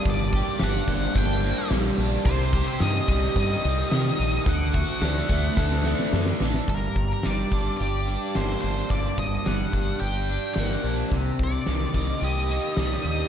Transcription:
<<
  \new Staff \with { instrumentName = "Lead electric guitar" } { \time 4/4 \key g \minor \tempo 4 = 108 d''4 fis''4 g''4 r4 | c''8. c''16 ees''4 ees''2 | fis''2.~ fis''8 r8 | bes'8. bes'16 d''4 d''4 c''8 c''8 |
d''8 ees''8 fis''4 g''4 fis''8. r16 | r8 d''4. ees''2 | }
  \new Staff \with { instrumentName = "Overdriven electric guitar" } { \time 4/4 \key g \minor <g, g bes d'>8 g'8 d'8 bes8 d'8 bes8 g8 d'8 | c8 g'8 ees'8 g8 ees'8 g8 ees8 ees'8 | d8 fis'8 d'8 a8 d'8 a8 d8 d'8 | g,4 g8 d'8 g'8 d'8 bes8 d'8 |
g,4 g8 d'8 g'8 d'8 bes8 d'8 | c4 ees8 ees'8 g'8 ees'8 g8 ees'8 | }
  \new Staff \with { instrumentName = "Fingered electric bass" } { \clef bass \time 4/4 \key g \minor g,,4 g,,8 g,,8 g,,4 bes,,8 bes,,8 | c,4 g,8 c,8 g,8 c,8 c8 bes,,8 | d,4 d,8 d,8 d,4 fis,8 a,,8 | g,,8 g,,8 g,,8 g,,8 g,,4 g,,8 g,,8 |
g,,8 g,,8 g,,8 g,,8 g,,4 g,,8 bes,,8 | c,8 c,8 c,8 c,8 c,4 c,8 ees,8 | }
  \new DrumStaff \with { instrumentName = "Drums" } \drummode { \time 4/4 <hho bd>8 <hho bd>8 <hho sn>8 <hho bd sn>8 <hho bd>8 hho8 <hho sn>8 hho8 | <cymc bd>8 <hho bd>8 <hho sn>8 <hho bd sn>8 <hho bd>8 hho8 <hho sn>16 sn16 hho8 | <hho bd>8 <hho bd>8 <hho sn>8 <hho bd>8 <bd sn>16 sn16 sn16 sn16 sn16 sn16 sn16 sn16 | <hh bd>8 <hh bd>8 <hh sn>8 <hh bd>8 hh8 hh8 <hh sn>8 hh8 |
<hh bd>8 <hh bd>8 <hh sn>8 <hh bd>8 hh8 hh8 <hh sn>8 hh8 | <hh bd>8 <hh bd>8 <hh sn>8 <hh bd>8 hh8 hh8 <hh sn>8 hh8 | }
>>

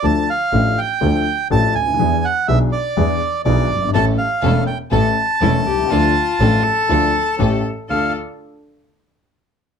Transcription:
<<
  \new Staff \with { instrumentName = "Bandoneon" } { \time 4/4 \key d \minor \tempo 4 = 122 a''8 f''4 g''4. a''8 gis''8~ | gis''8 fis''8 e''8 d''4. d''4 | a''8 f''4 g''8 a''2~ | a''2. r4 |
f''8 r2. r8 | }
  \new Staff \with { instrumentName = "Cello" } { \time 4/4 \key d \minor r1 | r1 | r2. e'8 g'8 | f'4. a'2 r8 |
a'8 r2. r8 | }
  \new Staff \with { instrumentName = "String section" } { \time 4/4 \key d \minor r1 | r1 | <cis' e' a'>8 r8 <cis' e' a'>8 r8 <cis' e' a'>8 r8 <cis' e' a'>8 r8 | <d' f' a'>8 r8 <d' f' a'>8 r8 <d' f' a'>8 r8 <cis' g' a'>8 r8 |
<d' f' a'>8 r2. r8 | }
  \new Staff \with { instrumentName = "Grand piano" } { \clef bass \time 4/4 \key d \minor <d, d f a d' a'>8 r8 <a,, a, f a d' a'>8 r8 <d, d f a d' a'>8 r8 <a,, a, f a d' a'>8 r32 cis,32 d,32 ees,32 | <e, e b d' gis'>8 r8 <b,, b, e b d' gis'>8 r8 <e, e b d' gis'>8 r8 <b,, b, e b d' gis'>8 r32 fis,,32 g,,32 gis,,32 | <a,, a, e a cis' a'>8 r8 <e,, e, e a cis' a'>8 r8 <a,, a, e a cis' a'>8 r8 <e,, e, e a cis' a'>8 r32 b,,32 c,32 cis,32 | <d, d f a d' a'>8 r8 <a,, a, f a d' a'>8 r8 <d, d f a d' a'>8 r8 <a,, a, e a cis' g'>8 r8 |
<d, a d' f'>8 r2. r8 | }
  \new Staff \with { instrumentName = "Double bass" } { \clef bass \time 4/4 \key d \minor d,8 r8 a,,8 r8 d,8 r8 a,,8 d,8 | e,8 r8 b,,8 r8 e,8 r8 b,,8 g,,8 | a,,8 r8 e,,8 r8 a,,8 r8 e,,8 c,8 | d,8 r8 a,,8 r8 d,8 r8 a,,8 r8 |
d,8 r2. r8 | }
>>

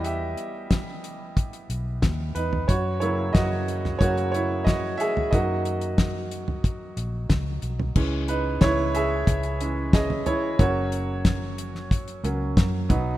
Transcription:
<<
  \new Staff \with { instrumentName = "Upright piano" } { \time 4/4 \key fis \mixolydian \tempo 4 = 91 <g' e''>2. r8 <dis' b'>8 | <fis' cis''>8 <e' cis''>8 <fis' dis''>4 <fis' cis''>8 <e' cis''>8 <fis' dis''>8 <gis' e''>8 | <fis' dis''>2. r4 | r8 <dis' b'>8 <e' cis''>8 <gis' e''>4. <gis' dis''>8 <e' cis''>8 |
<fis' cis''>2 r2 | }
  \new Staff \with { instrumentName = "Upright piano" } { \clef bass \time 4/4 \key fis \mixolydian <e g b>4 r2. | r8 <cis fis ais>8 r4 <cis fis ais>8 r4. | <dis fis ais>1 | <e gis cis'>8 r2 <e gis cis'>8 r4 |
<fis ais cis'>2~ <fis ais cis'>8 <fis ais cis'>8 r8 <fis b dis'>8 | }
  \new Staff \with { instrumentName = "Fingered electric bass" } { \clef bass \time 4/4 \key fis \mixolydian e,8 r2 b,,8 dis,8 e,8 | fis,4 fis,4 fis,4. r8 | fis,2~ fis,8 ais,,8 cis,8 b,,8 | cis,4 cis,4 cis,4. r8 |
fis,,2~ fis,,8 cis,8 fis,8 b,,8 | }
  \new DrumStaff \with { instrumentName = "Drums" } \drummode { \time 4/4 hh8 hh8 <hh bd sn>8 hh8 <hh bd>16 hh16 hh8 <hh bd sn>8 hh16 tomfh16 | <hh bd>8 hh8 <hh bd sn>8 hh16 <sn tomfh>16 <hh bd>16 hh16 hh8 <hh bd sn>8 hh16 tomfh16 | <hh bd>8 hh16 hh16 <hh bd sn>8 hh16 tomfh16 <hh bd>8 hh8 <hh bd sn>8 hh16 tomfh16 | <cymc bd>8 hh8 <hh bd sn>8 hh8 <hh bd>16 hh16 hh8 <hh bd sn>16 tomfh16 <hh tomfh>8 |
<hh bd>8 hh8 <hh bd sn>8 hh16 sn16 <hh bd>16 hh16 hh8 <hh bd sn>8 <hh bd tomfh>8 | }
>>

